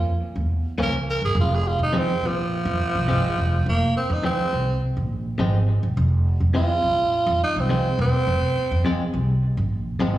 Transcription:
0.00 0.17 F2 medium
0.00 0.20 F4 loud
0.21 muted upright bass stroke soft
0.36 0.73 E2 medium
0.78 1.17 C#2 medium
0.78 0.96 A#2 medium
0.78 0.96 F3 medium
0.78 0.97 A#3 medium
0.78 0.97 C#4 medium
0.83 0.95 A#4 loud
1.10 1.23 A#4 loud
1.21 1.34 G1 medium
1.21 1.37 G#4 medium
1.35 1.74 F1 loud
1.41 1.57 F4 medium
1.55 1.69 G#4 medium
1.68 1.80 F4 medium
1.79 2.17 F2 medium
1.79 2.00 D#4 medium
1.93 2.11 F2 medium
1.93 2.11 F3 medium
1.93 2.11 G#3 medium
1.93 2.12 C4 medium
1.98 2.28 C4 loud
2.22 2.60 A#1 medium
2.27 3.64 F3 loud
2.65 2.78 F2 loud
2.80 muted upright bass stroke soft
2.95 3.07 C2 loud
3.08 3.34 G1 medium
3.08 3.26 F2 medium
3.08 3.26 F3 medium
3.08 3.27 G#3 loud
3.08 3.27 C4 medium
3.38 3.64 F1 medium
3.66 3.79 F1 medium
3.66 3.96 A#3 medium
3.95 4.15 C4 medium
3.95 muted upright bass stroke soft
4.10 4.22 F2 loud
4.10 4.24 D#4 medium
4.23 4.41 F2 medium
4.23 4.42 F3 medium
4.23 4.42 G#3 medium
4.23 4.42 C4 medium
4.23 4.81 C4 loud
4.39 muted upright bass stroke soft
4.53 4.78 C2 medium
4.81 muted upright bass stroke soft
4.97 5.34 A#1 medium
5.38 5.77 G#1 medium
5.38 5.56 F2 medium
5.38 5.57 F3 medium
5.38 5.57 G#3 medium
5.38 5.58 C4 loud
5.83 5.95 F1 medium
5.97 6.35 F1 loud
6.40 6.78 F2 medium
6.54 6.72 F2 medium
6.54 6.72 F3 medium
6.54 6.73 G#3 medium
6.54 6.73 C4 medium
6.54 7.39 F4 loud
6.83 7.22 A#1 medium
7.26 7.39 F2 loud
7.41 7.61 D#4 medium
7.41 muted upright bass stroke soft
7.56 7.81 C2 medium
7.56 7.99 C4 medium
7.69 7.87 F2 medium
7.69 7.88 F3 medium
7.69 7.88 G#3 medium
7.69 7.88 C4 medium
7.99 8.12 E1 medium
7.99 9.12 C4 loud
8.27 8.40 F1 medium
8.57 muted upright bass stroke soft
8.71 8.83 F2 loud
8.85 9.03 F2 medium
8.85 9.03 F3 medium
8.85 9.03 G#3 medium
8.85 9.03 C4 medium
9.00 muted upright bass stroke soft
9.13 9.39 C2 medium
9.42 muted upright bass stroke soft
9.57 9.95 A#1 medium
9.99 10.18 G#1 medium
9.99 10.18 F2 medium
9.99 10.18 F3 loud
9.99 10.18 G#3 loud
9.99 10.18 C4 medium

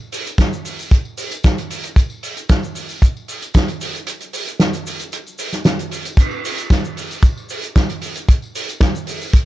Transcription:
0.12 open hi-hat loud
0.12 shaker medium
0.26 closed hi-hat medium
0.26 tambourine medium
0.26 shaker medium
0.38 kick loud
0.38 snare loud
0.38 closed hi-hat medium
0.38 tambourine medium
0.38 shaker medium
0.53 tambourine soft
0.53 shaker medium
0.65 open hi-hat medium
0.65 shaker medium
0.79 tambourine medium
0.79 shaker medium
0.91 kick loud
0.91 closed hi-hat medium
0.91 tambourine medium
0.91 shaker medium
1.05 tambourine soft
1.17 open hi-hat loud
1.17 shaker loud
1.31 closed hi-hat medium
1.31 tambourine medium
1.31 shaker medium
1.44 kick loud
1.44 snare loud
1.44 closed hi-hat medium
1.44 tambourine medium
1.44 shaker medium
1.58 closed hi-hat medium
1.58 tambourine soft
1.70 open hi-hat loud
1.70 shaker medium
1.83 closed hi-hat medium
1.83 tambourine medium
1.83 shaker medium
1.96 kick loud
1.96 closed hi-hat medium
1.96 tambourine medium
1.96 shaker medium
2.10 tambourine soft
2.23 open hi-hat loud
2.23 shaker loud
2.37 closed hi-hat medium
2.37 tambourine medium
2.37 shaker medium
2.49 kick loud
2.49 snare loud
2.49 closed hi-hat medium
2.49 tambourine medium
2.49 shaker medium
2.63 tambourine soft
2.63 shaker medium
2.75 open hi-hat medium
2.75 shaker medium
2.89 tambourine medium
2.89 shaker medium
3.02 kick loud
3.02 closed hi-hat medium
3.02 tambourine medium
3.02 shaker medium
3.17 tambourine soft
3.28 open hi-hat loud
3.28 shaker medium
3.42 closed hi-hat medium
3.42 tambourine medium
3.42 shaker medium
3.54 kick loud
3.54 snare loud
3.54 closed hi-hat medium
3.54 tambourine medium
3.54 shaker medium
3.68 closed hi-hat medium
3.68 tambourine soft
3.81 open hi-hat loud
3.81 shaker medium
3.94 closed hi-hat medium
3.94 tambourine medium
3.94 shaker soft
4.07 closed hi-hat medium
4.07 tambourine medium
4.07 shaker medium
4.20 closed hi-hat medium
4.20 tambourine soft
4.20 shaker soft
4.33 open hi-hat loud
4.33 shaker medium
4.47 closed hi-hat medium
4.47 tambourine medium
4.47 shaker medium
4.59 snare loud
4.59 closed hi-hat medium
4.59 tambourine medium
4.59 shaker medium
4.73 closed hi-hat medium
4.73 tambourine soft
4.73 shaker medium
4.87 open hi-hat loud
4.87 shaker loud
5.00 closed hi-hat medium
5.00 tambourine medium
5.00 shaker medium
5.12 closed hi-hat medium
5.12 tambourine medium
5.12 shaker medium
5.27 tambourine soft
5.27 shaker medium
5.38 open hi-hat loud
5.38 shaker medium
5.53 snare soft
5.53 closed hi-hat medium
5.53 tambourine medium
5.53 shaker soft
5.64 snare loud
5.64 closed hi-hat loud
5.64 tambourine medium
5.64 shaker medium
5.79 closed hi-hat medium
5.79 tambourine soft
5.79 shaker medium
5.91 open hi-hat loud
5.91 shaker medium
6.05 closed hi-hat medium
6.05 tambourine medium
6.05 shaker medium
6.17 kick loud
6.17 closed hi-hat medium
6.17 crash medium
6.17 tambourine medium
6.17 shaker medium
6.31 tambourine soft
6.45 open hi-hat loud
6.45 shaker medium
6.58 closed hi-hat medium
6.58 tambourine medium
6.58 shaker medium
6.70 kick loud
6.70 snare loud
6.70 closed hi-hat medium
6.70 tambourine medium
6.70 shaker medium
6.85 tambourine soft
6.85 shaker medium
6.97 open hi-hat medium
6.97 shaker medium
7.11 tambourine medium
7.11 shaker medium
7.23 kick loud
7.23 closed hi-hat medium
7.23 tambourine medium
7.23 shaker medium
7.37 tambourine soft
7.49 open hi-hat loud
7.49 shaker medium
7.63 closed hi-hat soft
7.63 tambourine medium
7.63 shaker medium
7.76 kick loud
7.76 snare loud
7.76 closed hi-hat loud
7.76 tambourine medium
7.76 shaker medium
7.89 closed hi-hat medium
7.89 tambourine soft
8.01 open hi-hat medium
8.01 shaker medium
8.16 closed hi-hat medium
8.16 tambourine medium
8.16 shaker medium
8.28 kick loud
8.28 closed hi-hat loud
8.28 tambourine medium
8.28 shaker medium
8.42 tambourine soft
8.55 open hi-hat loud
8.55 shaker medium
8.69 closed hi-hat medium
8.69 tambourine medium
8.69 shaker soft
8.80 kick loud
8.80 snare loud
8.80 closed hi-hat medium
8.80 tambourine medium
8.80 shaker medium
8.95 tambourine soft
8.95 shaker medium
9.07 open hi-hat loud
9.07 shaker medium
9.22 tambourine medium
9.22 shaker soft
9.33 kick loud
9.33 closed hi-hat loud
9.33 tambourine medium
9.33 shaker medium

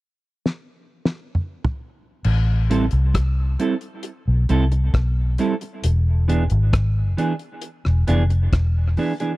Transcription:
0.46 snare soft
1.05 snare medium
1.35 mid tom medium
1.64 floor tom medium
2.24 2.88 A1 loud
2.24 crash medium
2.70 2.84 G3 medium
2.70 2.84 C4 medium
2.70 2.84 E4 medium
2.70 2.85 A4 medium
2.70 closed hi-hat medium
2.91 3.55 C2 medium
2.91 closed hi-hat soft
3.14 kick medium
3.14 cross-stick loud
3.14 closed hi-hat loud
3.59 3.73 G3 medium
3.59 3.74 C4 medium
3.59 3.74 E4 medium
3.59 3.74 A4 medium
3.59 closed hi-hat medium
3.81 closed hi-hat soft
4.03 closed hi-hat medium
4.28 4.48 B1 medium
4.49 4.92 C2 medium
4.49 4.63 G3 medium
4.49 4.63 C4 medium
4.49 4.64 E4 medium
4.49 4.64 A4 medium
4.49 closed hi-hat medium
4.72 muted clean electric guitar stroke medium
4.72 closed hi-hat soft
4.94 5.36 B1 medium
4.94 kick loud
4.94 cross-stick loud
4.94 closed hi-hat medium
5.38 5.53 G3 medium
5.38 5.53 C4 medium
5.38 5.53 E4 medium
5.38 5.54 A4 medium
5.38 closed hi-hat medium
5.61 muted clean electric guitar stroke soft
5.61 closed hi-hat soft
5.84 6.47 E1 loud
5.84 closed hi-hat medium
6.28 6.42 E3 medium
6.28 6.43 B3 medium
6.28 6.43 D4 medium
6.28 6.43 G#4 medium
6.28 closed hi-hat medium
6.50 7.14 G#1 loud
6.50 closed hi-hat soft
6.73 kick loud
6.73 cross-stick loud
6.73 closed hi-hat medium
7.17 7.32 E3 medium
7.17 7.32 B3 medium
7.17 7.33 D4 medium
7.17 7.33 G#4 medium
7.17 closed hi-hat medium
7.39 closed hi-hat soft
7.62 closed hi-hat medium
7.85 8.07 E1 medium
7.85 cross-stick medium
8.07 8.50 F1 medium
8.07 8.22 E3 medium
8.07 8.22 B3 medium
8.07 8.22 D4 medium
8.07 8.23 G#4 loud
8.07 closed hi-hat medium
8.30 muted clean electric guitar stroke soft
8.30 closed hi-hat soft
8.53 8.95 E1 medium
8.53 kick medium
8.53 cross-stick loud
8.53 closed hi-hat medium
8.97 9.12 E3 medium
8.97 9.12 B3 medium
8.97 9.12 D4 medium
8.97 9.13 G#4 medium
8.97 open hi-hat medium
9.20 9.32 E3 soft
9.20 9.32 B3 soft
9.20 9.32 D4 medium
9.20 9.31 G#4 medium
9.20 closed hi-hat soft

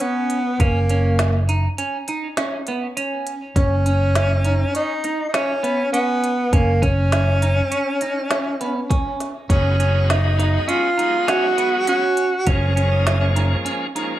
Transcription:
0.00 0.62 B3 medium
0.00 0.38 C#4 medium
0.00 closed hi-hat medium
0.30 closed hi-hat medium
0.60 1.66 F#1 medium
0.60 1.49 A#3 medium
0.60 0.79 C#4 medium
0.60 kick loud
0.60 closed hi-hat medium
0.89 1.27 C#4 medium
0.89 closed hi-hat medium
1.19 snare loud
1.19 closed hi-hat medium
1.49 1.67 D#4 medium
1.49 closed hi-hat medium
1.78 1.97 C#4 medium
1.78 closed hi-hat medium
2.08 2.27 D#4 medium
2.08 closed hi-hat medium
2.37 2.56 C#4 medium
2.37 snare loud
2.37 closed hi-hat medium
2.67 2.86 B3 medium
2.67 closed hi-hat medium
2.97 3.34 C#4 medium
2.97 closed hi-hat medium
3.27 closed hi-hat medium
3.56 4.63 F#1 medium
3.56 3.75 C#4 medium
3.56 4.71 C#4 loud
3.56 kick loud
3.56 closed hi-hat medium
3.86 4.23 C#4 medium
3.86 closed hi-hat medium
4.15 snare loud
4.15 closed hi-hat medium
4.45 4.64 D#4 medium
4.45 closed hi-hat medium
4.75 4.93 C#4 medium
4.75 5.24 D#4 medium
4.75 closed hi-hat medium
5.04 5.23 D#4 medium
5.04 closed hi-hat medium
5.29 5.36 D#4 medium
5.34 5.53 C#4 medium
5.34 5.92 C#4 medium
5.34 snare loud
5.34 closed hi-hat medium
5.63 5.82 B3 medium
5.63 closed hi-hat medium
5.92 6.56 B3 medium
5.92 6.31 C#4 medium
5.92 closed hi-hat medium
6.24 closed hi-hat medium
6.53 7.60 F#1 medium
6.53 6.85 A#3 medium
6.53 6.72 C#4 medium
6.53 kick loud
6.53 closed hi-hat medium
6.82 7.20 C#4 medium
6.82 9.20 C#4 medium
6.82 kick medium
6.82 closed hi-hat medium
7.12 snare loud
7.12 closed hi-hat medium
7.42 7.61 D#4 medium
7.42 closed hi-hat medium
7.71 7.90 C#4 medium
7.71 closed hi-hat medium
8.01 8.20 D#4 medium
8.01 closed hi-hat medium
8.31 8.50 C#4 medium
8.31 snare loud
8.31 closed hi-hat medium
8.61 8.80 B3 medium
8.61 closed hi-hat medium
8.90 9.27 C#4 medium
8.90 kick loud
8.90 closed hi-hat medium
9.20 snare soft
9.20 closed hi-hat medium
9.49 10.57 F#1 medium
9.49 9.76 F#3 medium
9.49 9.76 G#3 medium
9.49 9.77 B3 medium
9.49 9.68 C#4 medium
9.49 10.12 C#4 medium
9.49 9.77 D#4 medium
9.49 kick loud
9.49 closed hi-hat medium
9.79 9.93 F#3 medium
9.79 9.93 G#3 medium
9.79 9.93 B3 medium
9.79 10.17 C#4 medium
9.79 9.93 D#4 medium
9.79 closed hi-hat medium
9.94 10.20 F#3 medium
9.94 10.21 G#3 medium
9.94 10.21 B3 medium
9.94 10.21 D#4 medium
10.10 10.70 D#4 medium
10.10 snare loud
10.10 closed hi-hat medium
10.24 10.90 F#3 medium
10.24 10.90 G#3 medium
10.24 10.90 B3 medium
10.24 10.90 D#4 medium
10.39 10.58 D#4 medium
10.39 snare soft
10.39 closed hi-hat medium
10.68 10.87 C#4 medium
10.68 11.31 F4 medium
10.68 closed hi-hat medium
10.98 12.04 F#3 medium
10.98 12.04 G#3 medium
10.98 12.04 B3 medium
10.98 11.17 D#4 medium
10.98 12.04 D#4 medium
10.98 closed hi-hat medium
11.27 11.46 C#4 medium
11.27 11.88 F#4 medium
11.27 snare loud
11.27 closed hi-hat medium
11.58 11.76 B3 medium
11.58 closed hi-hat medium
11.87 12.25 C#4 medium
11.87 12.50 F#4 medium
11.87 closed hi-hat medium
12.17 closed hi-hat medium
12.47 13.54 F#1 medium
12.47 12.73 F3 medium
12.47 12.74 G#3 medium
12.47 12.74 A#3 medium
12.47 12.66 C#4 medium
12.47 12.74 C#4 medium
12.47 13.67 C#4 medium
12.47 kick loud
12.47 closed hi-hat medium
12.76 12.90 F3 medium
12.76 12.90 G#3 medium
12.76 12.90 A#3 medium
12.76 13.14 C#4 medium
12.76 12.90 C#4 medium
12.76 closed hi-hat medium
12.92 13.18 F3 medium
12.92 13.18 G#3 medium
12.92 13.18 A#3 medium
12.92 13.18 D#4 medium
13.07 snare loud
13.07 closed hi-hat medium
13.21 13.87 F3 medium
13.21 13.87 G#3 medium
13.21 13.87 A#3 medium
13.21 13.87 C#4 medium
13.36 13.55 D#4 medium
13.36 closed hi-hat medium
13.65 13.84 C#4 medium
13.65 closed hi-hat medium
13.95 14.19 F3 medium
13.95 14.19 G#3 medium
13.95 14.19 A#3 medium
13.95 14.19 C#4 medium
13.95 14.14 D#4 medium
13.95 closed hi-hat medium

